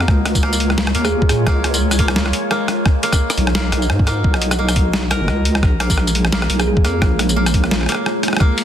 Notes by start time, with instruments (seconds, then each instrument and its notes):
Already playing: koto A#3
0.00 cross-stick
0.08 wobble bass C#2, ambient pad G#3 F4 C#5, kick, cross-stick
0.25 cross-stick, closed hi-hat
0.35 kick, tambourine
0.43 koto A#3, cross-stick
0.53 tambourine
0.60 closed hi-hat
0.70 cross-stick
0.78 snare, closed hi-hat
0.87 cross-stick
0.95 wobble bass D#2, koto A#3, closed hi-hat
1.05 kalimba G#4, cross-stick, tambourine
1.12 kalimba G#4
1.22 kick
1.29 wobble bass A#2, kalimba G#4, cross-stick, closed hi-hat, tambourine
1.47 wobble bass C#2, koto A#3, kick, cross-stick
1.64 cross-stick, closed hi-hat
1.74 tambourine
1.91 cross-stick, tambourine
1.99 koto A#3, kick, closed hi-hat
2.08 cross-stick
2.16 snare, closed hi-hat
2.26 cross-stick
2.33 closed hi-hat
2.51 koto A#3, cross-stick
2.68 cross-stick, closed hi-hat
2.86 ambient pad F#4 D#5, kick, cross-stick
3.03 koto A#3, closed hi-hat
3.13 kick, cross-stick, tambourine
3.30 cross-stick, tambourine
3.38 wobble bass B1, closed hi-hat
3.47 cross-stick
3.55 koto A#3, snare, closed hi-hat
3.72 wobble bass B1, cross-stick, closed hi-hat
3.82 tambourine
3.90 wobble bass G#2, cross-stick
3.99 kick
4.07 koto A#3, cross-stick, closed hi-hat, tambourine
4.24 wobble bass B1, kick
4.34 cross-stick
4.42 closed hi-hat
4.51 cross-stick, tambourine
4.59 koto A#3
4.69 cross-stick, tambourine
4.76 kick, closed hi-hat
4.93 cross-stick, snare, closed hi-hat
5.11 koto A#4, cross-stick, closed hi-hat
5.21 wobble bass F#1
5.28 wobble bass C#2, cross-stick
5.45 closed hi-hat
5.55 cross-stick
5.63 wobble bass A#1, synth texture G#3 G#4, ambient pad A#3 F4 C#5, kick, cross-stick
5.80 koto A#3, cross-stick, closed hi-hat
5.90 kick, tambourine
5.98 cross-stick
6.07 tambourine
6.15 closed hi-hat
6.25 cross-stick
6.32 koto A#3, snare, closed hi-hat
6.42 cross-stick
6.50 wobble bass B1, closed hi-hat
6.59 kalimba G#4, cross-stick, tambourine
6.67 kalimba G#4
6.77 kick
6.84 wobble bass F2, koto A#3, cross-stick, closed hi-hat, tambourine
7.02 wobble bass A#1, kick, cross-stick
7.19 cross-stick, closed hi-hat
7.29 tambourine
7.36 koto A#3
7.46 cross-stick, tambourine
7.54 kick, closed hi-hat
7.64 cross-stick
7.71 snare, closed hi-hat
7.81 cross-stick
7.83 cross-stick
7.86 koto A#3, cross-stick
7.89 cross-stick, closed hi-hat
7.92 cross-stick
7.95 cross-stick
8.06 cross-stick
8.23 cross-stick, closed hi-hat
8.28 cross-stick
8.33 cross-stick
8.37 cross-stick
8.40 koto A#3, ambient pad A#3 F#4 D#5, kick, cross-stick
8.58 closed hi-hat